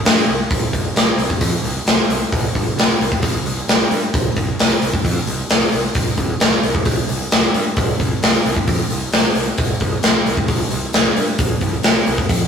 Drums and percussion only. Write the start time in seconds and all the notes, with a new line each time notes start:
0.05 snare, open hi-hat
0.51 kick, open hi-hat
0.73 kick, open hi-hat
0.96 snare, open hi-hat
1.18 open hi-hat
1.30 kick
1.41 kick, open hi-hat
1.64 open hi-hat
1.87 snare, open hi-hat
2.10 open hi-hat
2.32 kick, open hi-hat
2.55 kick, open hi-hat
2.79 snare, open hi-hat
3.01 open hi-hat
3.12 kick
3.23 kick, open hi-hat
3.46 open hi-hat
3.68 snare, open hi-hat
3.91 open hi-hat
4.14 kick, open hi-hat
4.36 kick, open hi-hat
4.59 snare, open hi-hat
4.82 open hi-hat
4.93 kick
5.05 kick, open hi-hat
5.27 open hi-hat
5.50 snare, open hi-hat
5.72 open hi-hat
5.95 kick, open hi-hat
6.17 kick, open hi-hat
6.40 snare, open hi-hat
6.63 open hi-hat
6.75 kick
6.85 kick, open hi-hat
7.09 open hi-hat
7.31 snare, open hi-hat
7.54 open hi-hat
7.77 kick, open hi-hat
8.00 kick, open hi-hat
8.23 snare, open hi-hat
8.46 open hi-hat
8.56 kick
8.68 kick, open hi-hat
8.90 open hi-hat
9.13 snare, open hi-hat
9.35 open hi-hat
9.58 kick, open hi-hat
9.80 kick, open hi-hat
10.03 snare, open hi-hat
10.26 open hi-hat
10.37 kick
10.48 kick, open hi-hat
10.70 open hi-hat
10.93 snare, open hi-hat
11.17 open hi-hat
11.39 kick, open hi-hat
11.61 kick, open hi-hat
11.83 snare, open hi-hat
12.06 open hi-hat
12.18 kick
12.29 kick, open hi-hat